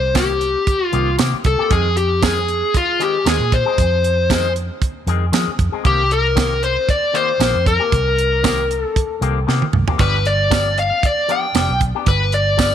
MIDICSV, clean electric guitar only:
0, 0, Header, 1, 2, 480
1, 0, Start_track
1, 0, Key_signature, -3, "minor"
1, 0, Tempo, 518135
1, 1582, Time_signature, 4, 2, 24, 8
1, 11811, End_track
2, 0, Start_track
2, 0, Title_t, "Clean electric guitar"
2, 0, Program_c, 0, 27
2, 132, Note_on_c, 0, 51, 73
2, 140, Note_on_c, 0, 58, 78
2, 143, Note_on_c, 0, 60, 83
2, 147, Note_on_c, 0, 67, 82
2, 291, Note_off_c, 0, 51, 0
2, 295, Note_off_c, 0, 58, 0
2, 297, Note_off_c, 0, 60, 0
2, 298, Note_off_c, 0, 67, 0
2, 857, Note_on_c, 0, 51, 61
2, 863, Note_on_c, 0, 58, 67
2, 869, Note_on_c, 0, 60, 65
2, 875, Note_on_c, 0, 67, 67
2, 1013, Note_off_c, 0, 51, 0
2, 1016, Note_off_c, 0, 58, 0
2, 1019, Note_off_c, 0, 60, 0
2, 1022, Note_off_c, 0, 67, 0
2, 1094, Note_on_c, 0, 51, 73
2, 1100, Note_on_c, 0, 58, 80
2, 1103, Note_on_c, 0, 60, 83
2, 1108, Note_on_c, 0, 67, 88
2, 1252, Note_off_c, 0, 51, 0
2, 1255, Note_off_c, 0, 58, 0
2, 1256, Note_off_c, 0, 60, 0
2, 1259, Note_off_c, 0, 67, 0
2, 1468, Note_on_c, 0, 67, 50
2, 1474, Note_on_c, 0, 60, 41
2, 1483, Note_on_c, 0, 58, 41
2, 1573, Note_off_c, 0, 60, 0
2, 1573, Note_on_c, 0, 51, 63
2, 1575, Note_off_c, 0, 58, 0
2, 1579, Note_off_c, 0, 67, 0
2, 1579, Note_on_c, 0, 56, 70
2, 1584, Note_on_c, 0, 60, 69
2, 1588, Note_on_c, 0, 68, 73
2, 1731, Note_off_c, 0, 51, 0
2, 1734, Note_off_c, 0, 56, 0
2, 1737, Note_off_c, 0, 60, 0
2, 1739, Note_off_c, 0, 68, 0
2, 2057, Note_on_c, 0, 51, 72
2, 2061, Note_on_c, 0, 56, 68
2, 2063, Note_on_c, 0, 60, 77
2, 2068, Note_on_c, 0, 68, 80
2, 2213, Note_off_c, 0, 51, 0
2, 2215, Note_off_c, 0, 56, 0
2, 2216, Note_off_c, 0, 60, 0
2, 2218, Note_off_c, 0, 68, 0
2, 2774, Note_on_c, 0, 51, 49
2, 2780, Note_on_c, 0, 56, 53
2, 2787, Note_on_c, 0, 60, 57
2, 2794, Note_on_c, 0, 68, 60
2, 2931, Note_off_c, 0, 51, 0
2, 2934, Note_off_c, 0, 56, 0
2, 2938, Note_off_c, 0, 60, 0
2, 2941, Note_off_c, 0, 68, 0
2, 3014, Note_on_c, 0, 51, 71
2, 3021, Note_on_c, 0, 56, 68
2, 3022, Note_on_c, 0, 60, 73
2, 3027, Note_on_c, 0, 68, 79
2, 3171, Note_off_c, 0, 51, 0
2, 3175, Note_off_c, 0, 56, 0
2, 3175, Note_off_c, 0, 60, 0
2, 3178, Note_off_c, 0, 68, 0
2, 3386, Note_on_c, 0, 68, 52
2, 3395, Note_on_c, 0, 60, 49
2, 3405, Note_on_c, 0, 56, 46
2, 3524, Note_off_c, 0, 68, 0
2, 3528, Note_off_c, 0, 60, 0
2, 3533, Note_off_c, 0, 56, 0
2, 3981, Note_on_c, 0, 51, 84
2, 3986, Note_on_c, 0, 56, 78
2, 3990, Note_on_c, 0, 60, 86
2, 3994, Note_on_c, 0, 68, 85
2, 4134, Note_off_c, 0, 51, 0
2, 4137, Note_off_c, 0, 56, 0
2, 4139, Note_off_c, 0, 60, 0
2, 4141, Note_off_c, 0, 68, 0
2, 4699, Note_on_c, 0, 51, 60
2, 4707, Note_on_c, 0, 56, 67
2, 4712, Note_on_c, 0, 60, 60
2, 4717, Note_on_c, 0, 68, 66
2, 4853, Note_off_c, 0, 51, 0
2, 4857, Note_off_c, 0, 56, 0
2, 4859, Note_off_c, 0, 60, 0
2, 4862, Note_off_c, 0, 68, 0
2, 4933, Note_on_c, 0, 51, 86
2, 4937, Note_on_c, 0, 56, 83
2, 4945, Note_on_c, 0, 60, 86
2, 4947, Note_on_c, 0, 68, 90
2, 5090, Note_off_c, 0, 51, 0
2, 5092, Note_off_c, 0, 56, 0
2, 5096, Note_off_c, 0, 60, 0
2, 5097, Note_off_c, 0, 68, 0
2, 5303, Note_on_c, 0, 68, 48
2, 5314, Note_on_c, 0, 60, 50
2, 5323, Note_on_c, 0, 56, 45
2, 5408, Note_off_c, 0, 60, 0
2, 5408, Note_on_c, 0, 51, 67
2, 5412, Note_off_c, 0, 56, 0
2, 5415, Note_off_c, 0, 68, 0
2, 5415, Note_on_c, 0, 58, 72
2, 5419, Note_on_c, 0, 60, 67
2, 5426, Note_on_c, 0, 67, 68
2, 5567, Note_off_c, 0, 51, 0
2, 5571, Note_off_c, 0, 58, 0
2, 5573, Note_off_c, 0, 60, 0
2, 5577, Note_off_c, 0, 67, 0
2, 5886, Note_on_c, 0, 51, 79
2, 5894, Note_on_c, 0, 58, 73
2, 5898, Note_on_c, 0, 60, 75
2, 5902, Note_on_c, 0, 67, 82
2, 6046, Note_off_c, 0, 51, 0
2, 6050, Note_off_c, 0, 58, 0
2, 6052, Note_off_c, 0, 60, 0
2, 6054, Note_off_c, 0, 67, 0
2, 6610, Note_on_c, 0, 51, 60
2, 6616, Note_on_c, 0, 58, 58
2, 6624, Note_on_c, 0, 60, 58
2, 6629, Note_on_c, 0, 67, 61
2, 6768, Note_off_c, 0, 51, 0
2, 6771, Note_off_c, 0, 58, 0
2, 6775, Note_off_c, 0, 60, 0
2, 6778, Note_off_c, 0, 67, 0
2, 6853, Note_on_c, 0, 51, 67
2, 6856, Note_on_c, 0, 58, 75
2, 6861, Note_on_c, 0, 60, 81
2, 6865, Note_on_c, 0, 67, 78
2, 7010, Note_off_c, 0, 51, 0
2, 7011, Note_off_c, 0, 58, 0
2, 7014, Note_off_c, 0, 60, 0
2, 7015, Note_off_c, 0, 67, 0
2, 7221, Note_on_c, 0, 67, 54
2, 7234, Note_on_c, 0, 60, 42
2, 7241, Note_on_c, 0, 58, 38
2, 7360, Note_off_c, 0, 67, 0
2, 7366, Note_off_c, 0, 60, 0
2, 7370, Note_off_c, 0, 58, 0
2, 7812, Note_on_c, 0, 51, 87
2, 7821, Note_on_c, 0, 58, 79
2, 7823, Note_on_c, 0, 60, 88
2, 7829, Note_on_c, 0, 67, 93
2, 7969, Note_off_c, 0, 51, 0
2, 7973, Note_off_c, 0, 58, 0
2, 7975, Note_off_c, 0, 60, 0
2, 7977, Note_off_c, 0, 67, 0
2, 8534, Note_on_c, 0, 51, 64
2, 8540, Note_on_c, 0, 58, 65
2, 8547, Note_on_c, 0, 60, 74
2, 8552, Note_on_c, 0, 67, 68
2, 8690, Note_off_c, 0, 51, 0
2, 8693, Note_off_c, 0, 58, 0
2, 8696, Note_off_c, 0, 60, 0
2, 8699, Note_off_c, 0, 67, 0
2, 8774, Note_on_c, 0, 51, 76
2, 8780, Note_on_c, 0, 58, 87
2, 8785, Note_on_c, 0, 60, 85
2, 8787, Note_on_c, 0, 67, 77
2, 8930, Note_off_c, 0, 51, 0
2, 8933, Note_off_c, 0, 58, 0
2, 8935, Note_off_c, 0, 60, 0
2, 8936, Note_off_c, 0, 67, 0
2, 9149, Note_on_c, 0, 67, 48
2, 9157, Note_on_c, 0, 60, 46
2, 9168, Note_on_c, 0, 58, 42
2, 9248, Note_on_c, 0, 53, 68
2, 9253, Note_off_c, 0, 58, 0
2, 9254, Note_off_c, 0, 67, 0
2, 9256, Note_off_c, 0, 60, 0
2, 9257, Note_on_c, 0, 59, 65
2, 9259, Note_on_c, 0, 62, 65
2, 9265, Note_on_c, 0, 67, 80
2, 9407, Note_off_c, 0, 53, 0
2, 9411, Note_off_c, 0, 59, 0
2, 9412, Note_off_c, 0, 62, 0
2, 9415, Note_off_c, 0, 67, 0
2, 9730, Note_on_c, 0, 53, 69
2, 9735, Note_on_c, 0, 59, 68
2, 9740, Note_on_c, 0, 62, 78
2, 9744, Note_on_c, 0, 67, 82
2, 9888, Note_off_c, 0, 53, 0
2, 9890, Note_off_c, 0, 59, 0
2, 9893, Note_off_c, 0, 62, 0
2, 9895, Note_off_c, 0, 67, 0
2, 10454, Note_on_c, 0, 53, 56
2, 10462, Note_on_c, 0, 59, 63
2, 10469, Note_on_c, 0, 62, 58
2, 10472, Note_on_c, 0, 67, 67
2, 10610, Note_off_c, 0, 53, 0
2, 10614, Note_off_c, 0, 59, 0
2, 10617, Note_off_c, 0, 62, 0
2, 10619, Note_off_c, 0, 67, 0
2, 10697, Note_on_c, 0, 53, 72
2, 10699, Note_on_c, 0, 59, 71
2, 10707, Note_on_c, 0, 62, 77
2, 10710, Note_on_c, 0, 67, 77
2, 10851, Note_off_c, 0, 53, 0
2, 10853, Note_off_c, 0, 59, 0
2, 10856, Note_off_c, 0, 62, 0
2, 10858, Note_off_c, 0, 67, 0
2, 11071, Note_on_c, 0, 67, 55
2, 11078, Note_on_c, 0, 62, 52
2, 11088, Note_on_c, 0, 59, 46
2, 11205, Note_off_c, 0, 67, 0
2, 11209, Note_off_c, 0, 62, 0
2, 11214, Note_off_c, 0, 59, 0
2, 11649, Note_on_c, 0, 53, 79
2, 11657, Note_on_c, 0, 59, 81
2, 11660, Note_on_c, 0, 62, 80
2, 11666, Note_on_c, 0, 67, 87
2, 11808, Note_off_c, 0, 53, 0
2, 11811, Note_off_c, 0, 59, 0
2, 11811, Note_off_c, 0, 62, 0
2, 11811, Note_off_c, 0, 67, 0
2, 11811, End_track
0, 0, End_of_file